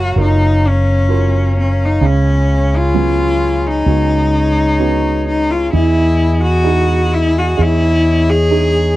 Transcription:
Already playing: F#1 F#3 C#4 F#4 A#4 C#5 F5 A#5
0.16 F#1 F4 F#4 A#4
0.21 D#4
0.67 C#4
1.09 F4 F#4 A#4
1.60 C#4
1.85 D#4
2.01 C#2 C#3 C#4 G#4 G#5 B5
2.76 F4
2.94 F#3 B3 C#4
3.67 D#4
3.86 C#2 B3 C#4 F#4 A#5
4.79 B3 C#4 F#4
5.28 D#4
5.51 F4
5.72 E2 E3 E4 D#5 G#5 B5
6.43 F#4
6.64 D#4 E4 G#4
7.13 E4
7.38 F#4
7.57 E2 E4 G#4 C#5 D#5
7.61 E4
8.29 G#4
8.51 D#4 E4 G#4

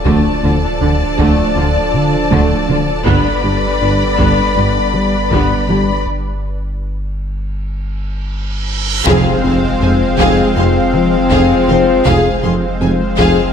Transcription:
0.05 D1 D2 D3 F3 A3 D4 A4 D5 A5, taiko
0.43 D2 D3 F4
0.81 D2 D3 D4
1.19 D2 D3 A3, taiko
1.56 D2 D3 F4
1.94 D3
2.31 D2 D3 A3, taiko
2.68 D2 D3 F4
3.05 G1 G2 D3 G3 B3 D4 B4 D5 B5, taiko
3.43 G1 G2 G4
3.81 G1 G2 D4
4.18 G1 G2 B3, taiko
4.56 G1 G2 G4
4.94 G3
5.31 G1 G2 B3, taiko
5.68 G1 G2 G3 G4
6.06 G1, reverse cymbal
9.06 F1 F2 F3 G#3 C4 G#4 C5 F5, taiko, impact
9.44 F1 F2 G#4 F5 C6
9.81 F1 F2 G#4 C5 G#5
10.18 F1 F2 G#4 F5, taiko
10.55 F1 F2 G#4 F5 C6
10.94 F3, taiko rim
11.31 F1 F2 G#4 F5, taiko
11.68 F1 F2 F3 G#4 F5 C6
12.06 F1 F2 F3 G#3 C4 G#4 C5 F5, taiko
12.43 F1 F2 G#4 F5 C6
12.81 F1 F2 G#4 C5 G#5
13.18 F1 F2 G#4 F5, taiko

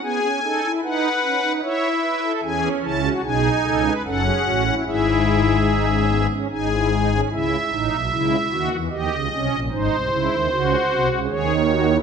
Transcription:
0.03 B3 G#4 G#5
0.22 C#4
0.43 D#4 A4
0.63 E4
0.83 D#4 B4 F#5
1.23 C#4
1.43 D#4
1.63 E4 C#5 E5
2.03 B4
2.23 A4
2.43 E2 E3 C#4 G#4 G#5
2.83 C#2 C#3 E4 A5
3.04 F#4
3.23 B1 B2 D#4 G#4 G#5
3.64 C#2 C#3 A4
3.85 B4
4.05 F#1 F#2 C#4 A4 F#5
4.25 G#4
4.45 A1 A2 F#4
4.67 E4
4.86 G#1 G#2 E4 G#4 E5
5.68 D#4
5.88 C#4
6.09 B3
6.30 C#4
6.51 G#1 G#2 D#4 G#4 G#5
6.71 E4
6.92 D#4
7.12 C#4
7.31 C#2 C#3 E4 E5
7.71 A1 A2 D#4
7.92 B1 B2
8.11 C#2 C#3 E4
8.51 D#2 D#3 F#4
8.71 E2 E3
8.90 D#2 D#3 G4 D#5
9.11 C#2 C#3
9.31 C2 C3 C#4
9.51 A#1 A#2
9.71 G#1 G#2 D#4 C5
9.91 C2 C3
10.11 C#2 C#3 E4
10.31 D#2 D#3
10.51 C#2 C#3 F#4
10.90 C2 C3
11.10 C#2 C#3
11.29 D#2 D#3 G#4 C#5
11.69 F#4
11.88 E4

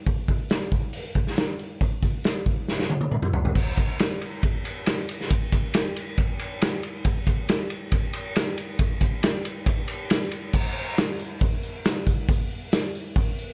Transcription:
0.07 kick, open hi-hat
0.28 kick, open hi-hat
0.50 snare, open hi-hat
0.72 kick, open hi-hat
0.93 open hi-hat
1.15 kick, open hi-hat
1.27 snare
1.37 snare, open hi-hat
1.59 open hi-hat
1.81 kick, open hi-hat
2.03 kick, open hi-hat
2.24 snare, open hi-hat
2.46 kick, open hi-hat
2.68 snare
2.79 snare
2.90 high tom
3.01 high tom
3.11 mid tom
3.22 mid tom
3.33 floor tom
3.45 floor tom
3.55 kick, crash
3.77 kick, ride
3.99 snare, ride
4.21 ride
4.43 kick, ride
4.65 ride
4.86 snare, ride
5.09 ride
5.21 snare
5.30 kick, ride
5.52 kick, ride
5.74 snare, ride
5.96 ride
6.18 kick, ride
6.39 ride
6.61 snare, ride
6.83 ride
7.05 kick, ride
7.27 kick, ride
7.49 snare, ride
7.70 ride
7.92 kick, ride
8.13 ride
8.36 snare, ride
8.58 ride
8.79 kick, ride
9.01 kick, ride
9.23 snare, ride
9.45 ride
9.66 kick, ride
9.88 ride
10.10 snare, ride
10.31 ride
10.53 kick, crash, tambourine
10.97 snare, open hi-hat, tambourine
11.19 tambourine
11.41 kick, open hi-hat, tambourine
11.63 tambourine
11.85 snare, open hi-hat, tambourine
12.07 kick, tambourine
12.29 kick, open hi-hat, tambourine
12.72 snare, open hi-hat, tambourine
12.95 tambourine
13.16 kick, open hi-hat, tambourine
13.39 tambourine

